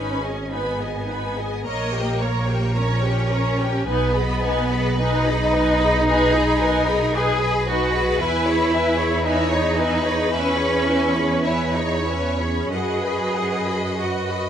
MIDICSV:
0, 0, Header, 1, 6, 480
1, 0, Start_track
1, 0, Tempo, 1138520
1, 696, Tempo, 1109057
1, 1658, Time_signature, 4, 2, 24, 8
1, 2616, Tempo, 1060071
1, 4536, Tempo, 1127820
1, 5016, Tempo, 1260504
1, 6173, End_track
2, 0, Start_track
2, 0, Title_t, "Violin section"
2, 0, Program_c, 0, 48
2, 0, Note_on_c, 0, 80, 49
2, 0, Note_on_c, 0, 83, 50
2, 92, Note_off_c, 0, 80, 0
2, 97, Note_on_c, 0, 80, 41
2, 100, Note_off_c, 0, 83, 0
2, 101, Note_on_c, 0, 75, 41
2, 215, Note_off_c, 0, 80, 0
2, 219, Note_on_c, 0, 83, 50
2, 220, Note_off_c, 0, 75, 0
2, 220, Note_on_c, 0, 80, 49
2, 331, Note_off_c, 0, 83, 0
2, 332, Note_off_c, 0, 80, 0
2, 341, Note_on_c, 0, 75, 40
2, 344, Note_on_c, 0, 80, 43
2, 459, Note_off_c, 0, 80, 0
2, 460, Note_off_c, 0, 75, 0
2, 464, Note_on_c, 0, 80, 44
2, 466, Note_on_c, 0, 83, 44
2, 579, Note_off_c, 0, 80, 0
2, 582, Note_off_c, 0, 83, 0
2, 584, Note_on_c, 0, 75, 47
2, 584, Note_on_c, 0, 80, 49
2, 690, Note_on_c, 0, 82, 42
2, 691, Note_on_c, 0, 70, 47
2, 699, Note_off_c, 0, 80, 0
2, 700, Note_off_c, 0, 75, 0
2, 806, Note_off_c, 0, 70, 0
2, 806, Note_off_c, 0, 82, 0
2, 811, Note_on_c, 0, 79, 48
2, 813, Note_on_c, 0, 73, 48
2, 933, Note_on_c, 0, 70, 55
2, 934, Note_on_c, 0, 82, 55
2, 935, Note_off_c, 0, 79, 0
2, 936, Note_off_c, 0, 73, 0
2, 1048, Note_on_c, 0, 79, 54
2, 1049, Note_on_c, 0, 73, 51
2, 1056, Note_off_c, 0, 70, 0
2, 1056, Note_off_c, 0, 82, 0
2, 1164, Note_on_c, 0, 82, 54
2, 1166, Note_on_c, 0, 70, 51
2, 1173, Note_off_c, 0, 79, 0
2, 1174, Note_off_c, 0, 73, 0
2, 1282, Note_off_c, 0, 82, 0
2, 1283, Note_off_c, 0, 70, 0
2, 1287, Note_on_c, 0, 73, 48
2, 1287, Note_on_c, 0, 79, 47
2, 1404, Note_on_c, 0, 82, 51
2, 1406, Note_on_c, 0, 70, 49
2, 1412, Note_off_c, 0, 73, 0
2, 1412, Note_off_c, 0, 79, 0
2, 1531, Note_off_c, 0, 82, 0
2, 1532, Note_off_c, 0, 70, 0
2, 1533, Note_on_c, 0, 73, 51
2, 1534, Note_on_c, 0, 79, 52
2, 1648, Note_on_c, 0, 71, 51
2, 1650, Note_on_c, 0, 80, 58
2, 1656, Note_off_c, 0, 73, 0
2, 1656, Note_off_c, 0, 79, 0
2, 1765, Note_off_c, 0, 71, 0
2, 1766, Note_off_c, 0, 80, 0
2, 1773, Note_on_c, 0, 75, 58
2, 1774, Note_on_c, 0, 83, 59
2, 1891, Note_on_c, 0, 71, 61
2, 1892, Note_on_c, 0, 80, 67
2, 1897, Note_off_c, 0, 75, 0
2, 1898, Note_off_c, 0, 83, 0
2, 2016, Note_off_c, 0, 71, 0
2, 2017, Note_off_c, 0, 80, 0
2, 2018, Note_on_c, 0, 75, 56
2, 2022, Note_on_c, 0, 83, 58
2, 2136, Note_on_c, 0, 71, 70
2, 2137, Note_on_c, 0, 80, 61
2, 2141, Note_off_c, 0, 75, 0
2, 2142, Note_off_c, 0, 83, 0
2, 2251, Note_off_c, 0, 71, 0
2, 2251, Note_off_c, 0, 80, 0
2, 2259, Note_on_c, 0, 75, 60
2, 2259, Note_on_c, 0, 83, 60
2, 2374, Note_on_c, 0, 80, 66
2, 2375, Note_on_c, 0, 71, 64
2, 2380, Note_off_c, 0, 75, 0
2, 2380, Note_off_c, 0, 83, 0
2, 2493, Note_on_c, 0, 75, 61
2, 2493, Note_on_c, 0, 83, 60
2, 2497, Note_off_c, 0, 71, 0
2, 2497, Note_off_c, 0, 80, 0
2, 2606, Note_on_c, 0, 80, 60
2, 2609, Note_on_c, 0, 71, 64
2, 2614, Note_off_c, 0, 75, 0
2, 2614, Note_off_c, 0, 83, 0
2, 2724, Note_off_c, 0, 80, 0
2, 2726, Note_off_c, 0, 71, 0
2, 2728, Note_on_c, 0, 83, 68
2, 2732, Note_on_c, 0, 75, 63
2, 2852, Note_on_c, 0, 71, 74
2, 2855, Note_off_c, 0, 83, 0
2, 2856, Note_off_c, 0, 75, 0
2, 2856, Note_on_c, 0, 80, 76
2, 2968, Note_on_c, 0, 75, 69
2, 2969, Note_on_c, 0, 83, 67
2, 2976, Note_off_c, 0, 71, 0
2, 2978, Note_off_c, 0, 80, 0
2, 3087, Note_on_c, 0, 71, 64
2, 3093, Note_on_c, 0, 80, 69
2, 3094, Note_off_c, 0, 75, 0
2, 3094, Note_off_c, 0, 83, 0
2, 3205, Note_off_c, 0, 71, 0
2, 3207, Note_off_c, 0, 80, 0
2, 3215, Note_on_c, 0, 75, 54
2, 3217, Note_on_c, 0, 83, 60
2, 3329, Note_on_c, 0, 71, 55
2, 3330, Note_on_c, 0, 80, 57
2, 3337, Note_off_c, 0, 75, 0
2, 3338, Note_off_c, 0, 83, 0
2, 3445, Note_on_c, 0, 75, 60
2, 3447, Note_on_c, 0, 83, 59
2, 3454, Note_off_c, 0, 71, 0
2, 3455, Note_off_c, 0, 80, 0
2, 3567, Note_on_c, 0, 80, 74
2, 3570, Note_on_c, 0, 76, 59
2, 3572, Note_off_c, 0, 75, 0
2, 3573, Note_off_c, 0, 83, 0
2, 3685, Note_off_c, 0, 80, 0
2, 3686, Note_off_c, 0, 76, 0
2, 3687, Note_on_c, 0, 73, 65
2, 3687, Note_on_c, 0, 83, 67
2, 3810, Note_on_c, 0, 80, 68
2, 3813, Note_off_c, 0, 73, 0
2, 3813, Note_off_c, 0, 83, 0
2, 3813, Note_on_c, 0, 76, 73
2, 3923, Note_on_c, 0, 83, 58
2, 3924, Note_on_c, 0, 73, 61
2, 3934, Note_off_c, 0, 80, 0
2, 3935, Note_off_c, 0, 76, 0
2, 4044, Note_on_c, 0, 76, 67
2, 4049, Note_on_c, 0, 80, 64
2, 4050, Note_off_c, 0, 73, 0
2, 4050, Note_off_c, 0, 83, 0
2, 4161, Note_off_c, 0, 76, 0
2, 4164, Note_off_c, 0, 80, 0
2, 4168, Note_on_c, 0, 73, 62
2, 4169, Note_on_c, 0, 83, 54
2, 4282, Note_on_c, 0, 76, 63
2, 4283, Note_on_c, 0, 80, 62
2, 4292, Note_off_c, 0, 73, 0
2, 4292, Note_off_c, 0, 83, 0
2, 4407, Note_on_c, 0, 73, 59
2, 4409, Note_on_c, 0, 83, 55
2, 4410, Note_off_c, 0, 76, 0
2, 4410, Note_off_c, 0, 80, 0
2, 4533, Note_on_c, 0, 80, 60
2, 4534, Note_off_c, 0, 73, 0
2, 4534, Note_on_c, 0, 76, 61
2, 4536, Note_off_c, 0, 83, 0
2, 4638, Note_on_c, 0, 73, 54
2, 4638, Note_on_c, 0, 83, 55
2, 4644, Note_off_c, 0, 80, 0
2, 4645, Note_off_c, 0, 76, 0
2, 4761, Note_on_c, 0, 76, 61
2, 4764, Note_on_c, 0, 80, 64
2, 4765, Note_off_c, 0, 73, 0
2, 4765, Note_off_c, 0, 83, 0
2, 4880, Note_on_c, 0, 83, 54
2, 4881, Note_on_c, 0, 73, 52
2, 4888, Note_off_c, 0, 76, 0
2, 4890, Note_off_c, 0, 80, 0
2, 4999, Note_on_c, 0, 80, 56
2, 5000, Note_on_c, 0, 76, 59
2, 5011, Note_off_c, 0, 83, 0
2, 5012, Note_off_c, 0, 73, 0
2, 5116, Note_off_c, 0, 80, 0
2, 5117, Note_off_c, 0, 76, 0
2, 5118, Note_on_c, 0, 83, 48
2, 5121, Note_on_c, 0, 73, 47
2, 5245, Note_on_c, 0, 76, 39
2, 5246, Note_on_c, 0, 80, 40
2, 5248, Note_off_c, 0, 83, 0
2, 5250, Note_off_c, 0, 73, 0
2, 5367, Note_on_c, 0, 83, 45
2, 5371, Note_on_c, 0, 73, 41
2, 5376, Note_off_c, 0, 76, 0
2, 5376, Note_off_c, 0, 80, 0
2, 5492, Note_on_c, 0, 78, 43
2, 5495, Note_off_c, 0, 78, 0
2, 5495, Note_on_c, 0, 78, 52
2, 5499, Note_off_c, 0, 83, 0
2, 5501, Note_off_c, 0, 73, 0
2, 5614, Note_off_c, 0, 78, 0
2, 5616, Note_on_c, 0, 75, 46
2, 5616, Note_on_c, 0, 83, 46
2, 5740, Note_on_c, 0, 78, 53
2, 5741, Note_off_c, 0, 75, 0
2, 5741, Note_off_c, 0, 83, 0
2, 5742, Note_off_c, 0, 78, 0
2, 5742, Note_on_c, 0, 78, 51
2, 5853, Note_on_c, 0, 75, 43
2, 5855, Note_on_c, 0, 83, 45
2, 5862, Note_off_c, 0, 78, 0
2, 5971, Note_on_c, 0, 78, 49
2, 5975, Note_off_c, 0, 78, 0
2, 5975, Note_on_c, 0, 78, 50
2, 5976, Note_off_c, 0, 75, 0
2, 5977, Note_off_c, 0, 83, 0
2, 6087, Note_off_c, 0, 78, 0
2, 6092, Note_on_c, 0, 75, 45
2, 6093, Note_on_c, 0, 83, 41
2, 6173, Note_off_c, 0, 75, 0
2, 6173, Note_off_c, 0, 83, 0
2, 6173, End_track
3, 0, Start_track
3, 0, Title_t, "Violin section"
3, 0, Program_c, 1, 48
3, 696, Note_on_c, 1, 75, 72
3, 921, Note_off_c, 1, 75, 0
3, 935, Note_on_c, 1, 73, 59
3, 1657, Note_off_c, 1, 73, 0
3, 1660, Note_on_c, 1, 71, 75
3, 2601, Note_off_c, 1, 71, 0
3, 2617, Note_on_c, 1, 68, 84
3, 2858, Note_on_c, 1, 70, 70
3, 2860, Note_off_c, 1, 68, 0
3, 3097, Note_on_c, 1, 71, 79
3, 3099, Note_off_c, 1, 70, 0
3, 4053, Note_on_c, 1, 73, 76
3, 4056, Note_off_c, 1, 71, 0
3, 4294, Note_off_c, 1, 73, 0
3, 4294, Note_on_c, 1, 71, 92
3, 5003, Note_off_c, 1, 71, 0
3, 5016, Note_on_c, 1, 73, 69
3, 5501, Note_on_c, 1, 75, 62
3, 5505, Note_off_c, 1, 73, 0
3, 6173, Note_off_c, 1, 75, 0
3, 6173, End_track
4, 0, Start_track
4, 0, Title_t, "Viola section"
4, 0, Program_c, 2, 48
4, 0, Note_on_c, 2, 63, 44
4, 0, Note_on_c, 2, 71, 43
4, 95, Note_off_c, 2, 63, 0
4, 95, Note_off_c, 2, 71, 0
4, 95, Note_on_c, 2, 68, 44
4, 217, Note_on_c, 2, 63, 43
4, 217, Note_on_c, 2, 71, 49
4, 218, Note_off_c, 2, 68, 0
4, 330, Note_off_c, 2, 63, 0
4, 330, Note_off_c, 2, 71, 0
4, 337, Note_on_c, 2, 68, 41
4, 338, Note_off_c, 2, 68, 0
4, 338, Note_on_c, 2, 68, 39
4, 455, Note_on_c, 2, 63, 41
4, 455, Note_on_c, 2, 71, 45
4, 458, Note_off_c, 2, 68, 0
4, 576, Note_off_c, 2, 63, 0
4, 576, Note_off_c, 2, 71, 0
4, 577, Note_on_c, 2, 68, 43
4, 579, Note_off_c, 2, 68, 0
4, 579, Note_on_c, 2, 68, 43
4, 695, Note_on_c, 2, 73, 53
4, 697, Note_off_c, 2, 68, 0
4, 697, Note_on_c, 2, 70, 51
4, 808, Note_off_c, 2, 73, 0
4, 809, Note_off_c, 2, 70, 0
4, 820, Note_on_c, 2, 67, 53
4, 820, Note_on_c, 2, 70, 50
4, 934, Note_off_c, 2, 70, 0
4, 938, Note_on_c, 2, 73, 47
4, 939, Note_off_c, 2, 67, 0
4, 939, Note_on_c, 2, 70, 50
4, 1057, Note_off_c, 2, 70, 0
4, 1058, Note_off_c, 2, 73, 0
4, 1062, Note_on_c, 2, 70, 42
4, 1063, Note_on_c, 2, 67, 42
4, 1172, Note_off_c, 2, 70, 0
4, 1178, Note_on_c, 2, 70, 48
4, 1180, Note_on_c, 2, 73, 52
4, 1181, Note_off_c, 2, 67, 0
4, 1289, Note_off_c, 2, 70, 0
4, 1291, Note_off_c, 2, 73, 0
4, 1298, Note_on_c, 2, 67, 55
4, 1299, Note_on_c, 2, 70, 45
4, 1418, Note_off_c, 2, 67, 0
4, 1418, Note_off_c, 2, 70, 0
4, 1425, Note_on_c, 2, 70, 47
4, 1425, Note_on_c, 2, 73, 51
4, 1533, Note_off_c, 2, 70, 0
4, 1538, Note_on_c, 2, 70, 49
4, 1539, Note_on_c, 2, 67, 54
4, 1541, Note_off_c, 2, 73, 0
4, 1655, Note_on_c, 2, 63, 65
4, 1656, Note_on_c, 2, 71, 64
4, 1658, Note_off_c, 2, 70, 0
4, 1659, Note_off_c, 2, 67, 0
4, 1769, Note_off_c, 2, 63, 0
4, 1769, Note_off_c, 2, 71, 0
4, 1776, Note_on_c, 2, 68, 52
4, 1777, Note_off_c, 2, 68, 0
4, 1777, Note_on_c, 2, 68, 52
4, 1897, Note_on_c, 2, 63, 58
4, 1898, Note_on_c, 2, 71, 56
4, 1899, Note_off_c, 2, 68, 0
4, 2019, Note_off_c, 2, 63, 0
4, 2019, Note_on_c, 2, 68, 51
4, 2020, Note_off_c, 2, 68, 0
4, 2020, Note_off_c, 2, 71, 0
4, 2020, Note_on_c, 2, 68, 49
4, 2135, Note_on_c, 2, 63, 66
4, 2135, Note_on_c, 2, 71, 68
4, 2141, Note_off_c, 2, 68, 0
4, 2250, Note_off_c, 2, 63, 0
4, 2250, Note_off_c, 2, 71, 0
4, 2253, Note_on_c, 2, 68, 57
4, 2256, Note_off_c, 2, 68, 0
4, 2256, Note_on_c, 2, 68, 56
4, 2376, Note_on_c, 2, 71, 58
4, 2377, Note_on_c, 2, 63, 62
4, 2379, Note_off_c, 2, 68, 0
4, 2495, Note_on_c, 2, 68, 64
4, 2497, Note_off_c, 2, 71, 0
4, 2498, Note_off_c, 2, 63, 0
4, 2498, Note_off_c, 2, 68, 0
4, 2498, Note_on_c, 2, 68, 65
4, 2612, Note_on_c, 2, 71, 75
4, 2613, Note_on_c, 2, 63, 71
4, 2617, Note_off_c, 2, 68, 0
4, 2728, Note_off_c, 2, 63, 0
4, 2728, Note_off_c, 2, 71, 0
4, 2733, Note_on_c, 2, 68, 62
4, 2736, Note_off_c, 2, 68, 0
4, 2736, Note_on_c, 2, 68, 70
4, 2853, Note_on_c, 2, 63, 60
4, 2853, Note_on_c, 2, 71, 65
4, 2858, Note_off_c, 2, 68, 0
4, 2973, Note_on_c, 2, 68, 56
4, 2975, Note_off_c, 2, 68, 0
4, 2975, Note_on_c, 2, 68, 63
4, 2977, Note_off_c, 2, 63, 0
4, 2977, Note_off_c, 2, 71, 0
4, 3093, Note_on_c, 2, 63, 68
4, 3094, Note_on_c, 2, 71, 59
4, 3097, Note_off_c, 2, 68, 0
4, 3207, Note_off_c, 2, 63, 0
4, 3208, Note_off_c, 2, 71, 0
4, 3211, Note_on_c, 2, 68, 59
4, 3212, Note_off_c, 2, 68, 0
4, 3212, Note_on_c, 2, 68, 66
4, 3333, Note_on_c, 2, 63, 59
4, 3334, Note_on_c, 2, 71, 65
4, 3336, Note_off_c, 2, 68, 0
4, 3455, Note_on_c, 2, 68, 61
4, 3456, Note_off_c, 2, 63, 0
4, 3456, Note_off_c, 2, 68, 0
4, 3456, Note_on_c, 2, 68, 60
4, 3457, Note_off_c, 2, 71, 0
4, 3572, Note_on_c, 2, 64, 65
4, 3573, Note_on_c, 2, 71, 70
4, 3578, Note_off_c, 2, 68, 0
4, 3687, Note_off_c, 2, 64, 0
4, 3688, Note_off_c, 2, 71, 0
4, 3691, Note_on_c, 2, 73, 59
4, 3692, Note_on_c, 2, 68, 61
4, 3813, Note_on_c, 2, 64, 63
4, 3813, Note_on_c, 2, 71, 63
4, 3815, Note_off_c, 2, 68, 0
4, 3815, Note_off_c, 2, 73, 0
4, 3923, Note_on_c, 2, 73, 61
4, 3925, Note_on_c, 2, 68, 57
4, 3935, Note_off_c, 2, 64, 0
4, 3935, Note_off_c, 2, 71, 0
4, 4050, Note_off_c, 2, 73, 0
4, 4051, Note_off_c, 2, 68, 0
4, 4052, Note_on_c, 2, 71, 69
4, 4053, Note_on_c, 2, 64, 65
4, 4165, Note_off_c, 2, 71, 0
4, 4166, Note_off_c, 2, 64, 0
4, 4169, Note_on_c, 2, 73, 58
4, 4170, Note_on_c, 2, 68, 56
4, 4283, Note_on_c, 2, 71, 58
4, 4285, Note_on_c, 2, 64, 59
4, 4292, Note_off_c, 2, 73, 0
4, 4293, Note_off_c, 2, 68, 0
4, 4404, Note_on_c, 2, 68, 57
4, 4404, Note_on_c, 2, 73, 56
4, 4411, Note_off_c, 2, 64, 0
4, 4411, Note_off_c, 2, 71, 0
4, 4526, Note_on_c, 2, 64, 61
4, 4527, Note_on_c, 2, 71, 62
4, 4533, Note_off_c, 2, 68, 0
4, 4533, Note_off_c, 2, 73, 0
4, 4639, Note_on_c, 2, 68, 59
4, 4640, Note_on_c, 2, 73, 61
4, 4641, Note_off_c, 2, 64, 0
4, 4641, Note_off_c, 2, 71, 0
4, 4763, Note_on_c, 2, 71, 53
4, 4766, Note_off_c, 2, 68, 0
4, 4766, Note_off_c, 2, 73, 0
4, 4766, Note_on_c, 2, 64, 55
4, 4890, Note_off_c, 2, 71, 0
4, 4891, Note_off_c, 2, 64, 0
4, 4891, Note_on_c, 2, 68, 48
4, 4891, Note_on_c, 2, 73, 44
4, 5012, Note_on_c, 2, 64, 52
4, 5014, Note_on_c, 2, 71, 47
4, 5017, Note_off_c, 2, 68, 0
4, 5017, Note_off_c, 2, 73, 0
4, 5123, Note_off_c, 2, 64, 0
4, 5124, Note_off_c, 2, 71, 0
4, 5129, Note_on_c, 2, 68, 47
4, 5132, Note_on_c, 2, 73, 52
4, 5250, Note_on_c, 2, 71, 45
4, 5252, Note_on_c, 2, 64, 43
4, 5254, Note_off_c, 2, 68, 0
4, 5255, Note_off_c, 2, 73, 0
4, 5379, Note_off_c, 2, 71, 0
4, 5380, Note_off_c, 2, 64, 0
4, 5380, Note_on_c, 2, 68, 40
4, 5381, Note_on_c, 2, 73, 44
4, 5499, Note_on_c, 2, 66, 52
4, 5502, Note_on_c, 2, 71, 51
4, 5505, Note_off_c, 2, 68, 0
4, 5506, Note_off_c, 2, 73, 0
4, 5616, Note_off_c, 2, 66, 0
4, 5618, Note_off_c, 2, 71, 0
4, 5624, Note_on_c, 2, 71, 47
4, 5625, Note_on_c, 2, 66, 46
4, 5739, Note_off_c, 2, 66, 0
4, 5739, Note_off_c, 2, 71, 0
4, 5743, Note_on_c, 2, 66, 48
4, 5744, Note_on_c, 2, 71, 50
4, 5858, Note_off_c, 2, 66, 0
4, 5861, Note_off_c, 2, 71, 0
4, 5862, Note_on_c, 2, 66, 41
4, 5866, Note_on_c, 2, 71, 44
4, 5973, Note_off_c, 2, 71, 0
4, 5975, Note_off_c, 2, 66, 0
4, 5978, Note_on_c, 2, 71, 44
4, 5979, Note_on_c, 2, 66, 54
4, 6089, Note_off_c, 2, 71, 0
4, 6090, Note_off_c, 2, 66, 0
4, 6096, Note_on_c, 2, 71, 39
4, 6097, Note_on_c, 2, 66, 43
4, 6173, Note_off_c, 2, 66, 0
4, 6173, Note_off_c, 2, 71, 0
4, 6173, End_track
5, 0, Start_track
5, 0, Title_t, "Cello section"
5, 0, Program_c, 3, 48
5, 0, Note_on_c, 3, 61, 72
5, 219, Note_off_c, 3, 61, 0
5, 221, Note_on_c, 3, 59, 62
5, 692, Note_on_c, 3, 58, 74
5, 697, Note_off_c, 3, 59, 0
5, 1176, Note_off_c, 3, 58, 0
5, 1176, Note_on_c, 3, 61, 86
5, 1657, Note_off_c, 3, 61, 0
5, 1658, Note_on_c, 3, 59, 95
5, 2132, Note_off_c, 3, 59, 0
5, 2142, Note_on_c, 3, 63, 109
5, 3098, Note_on_c, 3, 68, 107
5, 3100, Note_off_c, 3, 63, 0
5, 3337, Note_on_c, 3, 66, 95
5, 3338, Note_off_c, 3, 68, 0
5, 3573, Note_off_c, 3, 66, 0
5, 3575, Note_on_c, 3, 64, 101
5, 4050, Note_on_c, 3, 63, 95
5, 4055, Note_off_c, 3, 64, 0
5, 4536, Note_off_c, 3, 63, 0
5, 4536, Note_on_c, 3, 61, 106
5, 5012, Note_on_c, 3, 64, 89
5, 5017, Note_off_c, 3, 61, 0
5, 5128, Note_on_c, 3, 63, 81
5, 5131, Note_off_c, 3, 64, 0
5, 5251, Note_on_c, 3, 61, 66
5, 5253, Note_off_c, 3, 63, 0
5, 5499, Note_off_c, 3, 61, 0
5, 5501, Note_on_c, 3, 68, 85
5, 5978, Note_on_c, 3, 66, 64
5, 5979, Note_off_c, 3, 68, 0
5, 6173, Note_off_c, 3, 66, 0
5, 6173, End_track
6, 0, Start_track
6, 0, Title_t, "Double bass section"
6, 0, Program_c, 4, 48
6, 0, Note_on_c, 4, 32, 49
6, 678, Note_off_c, 4, 32, 0
6, 691, Note_on_c, 4, 34, 63
6, 1656, Note_off_c, 4, 34, 0
6, 1661, Note_on_c, 4, 35, 69
6, 3563, Note_off_c, 4, 35, 0
6, 3581, Note_on_c, 4, 40, 72
6, 5492, Note_off_c, 4, 40, 0
6, 5506, Note_on_c, 4, 42, 54
6, 6173, Note_off_c, 4, 42, 0
6, 6173, End_track
0, 0, End_of_file